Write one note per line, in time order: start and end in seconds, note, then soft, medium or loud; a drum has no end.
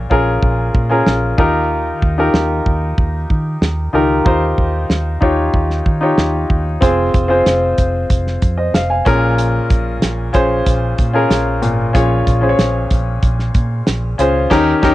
0.00 1.40 A#2 medium
0.00 0.10 C#4 medium
0.00 0.10 F4 medium
0.00 0.11 G#4 medium
0.00 0.11 A#4 medium
0.10 0.37 A#1 medium
0.10 0.72 C#4 medium
0.10 0.72 F4 medium
0.10 0.72 G#4 medium
0.10 0.72 A#4 medium
0.10 kick medium
0.42 0.69 A#1 medium
0.42 kick medium
0.75 1.01 A#2 loud
0.75 kick medium
0.90 1.38 C#4 medium
0.90 1.37 F4 medium
0.90 1.39 G#4 medium
0.90 1.38 A#4 medium
1.06 1.33 A#1 medium
1.06 snare loud
1.38 1.91 D#2 medium
1.38 2.31 D#3 medium
1.38 2.02 D#4 medium
1.38 2.02 F4 medium
1.38 2.03 G4 medium
1.38 2.03 A#4 medium
1.38 kick medium
2.02 2.28 D#2 medium
2.02 kick medium
2.18 3.16 D#4 medium
2.18 3.17 F4 medium
2.18 3.17 G4 medium
2.18 3.17 A#4 medium
2.34 2.60 D#2 medium
2.34 snare loud
2.66 2.92 D#2 medium
2.66 kick medium
2.98 3.24 D#2 medium
2.98 kick medium
3.30 3.56 D#3 medium
3.30 kick medium
3.61 3.88 D#2 medium
3.61 snare loud
3.93 4.20 C#2 medium
3.93 4.86 D#3 medium
3.93 4.18 D#4 medium
3.93 4.18 F4 medium
3.93 4.19 G4 medium
3.93 4.19 A#4 medium
4.25 4.52 D#2 medium
4.25 4.99 D#4 medium
4.25 4.99 F4 medium
4.25 5.00 G4 medium
4.25 5.00 C5 medium
4.25 kick loud
4.58 4.84 D#2 medium
4.58 kick medium
4.90 5.16 D#2 medium
4.90 snare medium
5.21 5.48 D#2 medium
5.21 5.83 D#4 medium
5.21 5.83 F4 medium
5.21 5.84 G4 medium
5.21 5.84 C#5 medium
5.21 kick medium
5.54 5.80 D#2 medium
5.54 kick medium
5.70 snare soft
5.86 6.12 D#3 medium
5.86 kick medium
6.01 6.63 D#4 medium
6.01 6.63 F4 medium
6.01 6.64 G4 medium
6.01 6.64 C#5 medium
6.18 6.44 D#2 medium
6.18 snare loud
6.50 6.76 D#2 medium
6.50 kick medium
6.81 7.08 F1 medium
6.81 7.18 C4 medium
6.81 7.19 F4 medium
6.81 7.19 G#4 medium
6.81 7.19 C5 medium
6.81 kick loud
6.81 closed hi-hat medium
7.14 7.40 F1 medium
7.14 kick medium
7.14 closed hi-hat medium
7.28 8.28 C4 medium
7.28 8.28 F4 medium
7.28 8.28 G#4 medium
7.28 8.29 C5 medium
7.46 7.72 F1 medium
7.46 snare medium
7.46 closed hi-hat medium
7.78 8.05 F1 medium
7.78 kick medium
7.78 closed hi-hat medium
8.10 8.36 F1 medium
8.10 kick medium
8.10 closed hi-hat medium
8.27 snare soft
8.42 8.69 F2 medium
8.42 kick medium
8.42 closed hi-hat medium
8.58 8.74 C5 soft
8.58 8.73 D#5 medium
8.74 9.00 F1 medium
8.74 8.89 F5 medium
8.74 snare loud
8.74 closed hi-hat medium
8.90 9.21 F5 medium
8.90 9.21 G#5 medium
9.05 9.59 A#1 medium
9.05 9.98 A#2 medium
9.05 10.08 C#4 medium
9.05 10.09 F4 medium
9.05 10.09 G#4 medium
9.05 10.09 A#4 medium
9.05 kick medium
9.05 closed hi-hat medium
9.38 closed hi-hat medium
9.70 9.97 A#1 medium
9.70 kick medium
9.70 closed hi-hat medium
10.02 10.29 A#1 medium
10.02 snare medium
10.02 closed hi-hat medium
10.33 10.61 A#1 medium
10.33 10.95 C#4 medium
10.33 10.95 F4 medium
10.33 10.96 G#4 medium
10.33 10.96 C5 medium
10.33 kick medium
10.33 closed hi-hat medium
10.66 10.93 A#1 medium
10.66 kick medium
10.66 closed hi-hat medium
10.98 11.25 A#2 medium
10.98 kick medium
10.98 closed hi-hat medium
11.13 11.75 C#4 medium
11.13 11.76 F4 medium
11.13 11.76 G#4 medium
11.13 11.76 A#4 medium
11.30 11.62 A#1 medium
11.30 snare loud
11.30 closed hi-hat medium
11.62 11.89 G#1 medium
11.62 12.54 A#2 medium
11.62 closed hi-hat medium
11.93 12.21 A#1 loud
11.93 12.31 C#4 medium
11.93 12.31 F4 medium
11.93 12.31 G#4 medium
11.93 12.32 C#5 medium
11.93 kick loud
11.93 closed hi-hat medium
12.27 12.53 A#1 medium
12.27 kick medium
12.27 closed hi-hat medium
12.41 13.40 C#4 medium
12.41 13.41 F4 medium
12.41 13.41 G#4 medium
12.41 12.49 C5 medium
12.49 13.44 C#5 medium
12.59 12.85 A#1 loud
12.59 snare medium
12.59 closed hi-hat medium
12.91 13.17 A#1 medium
12.91 kick medium
12.91 closed hi-hat medium
13.23 13.49 A#1 medium
13.23 kick medium
13.23 closed hi-hat medium
13.39 snare soft
13.55 13.81 A#2 medium
13.55 kick medium
13.55 closed hi-hat medium
13.87 14.13 A#1 medium
13.87 snare loud
13.87 closed hi-hat medium
14.18 14.45 C#2 medium
14.18 14.43 C#4 medium
14.18 14.43 F4 medium
14.18 14.44 G#4 medium
14.18 14.44 C5 medium
14.18 closed hi-hat medium
14.50 14.72 D#2 medium
14.50 14.73 D#3 medium
14.50 14.72 C#4 medium
14.50 14.72 D#4 medium
14.50 14.73 G4 medium
14.50 14.73 A#4 medium
14.50 kick medium
14.50 snare medium
14.50 crash medium
14.82 14.95 D#2 medium
14.82 14.95 D#3 medium
14.82 14.95 C#4 medium
14.82 14.95 D#4 medium
14.82 14.95 G4 loud
14.82 14.95 A#4 medium
14.82 kick loud
14.82 snare medium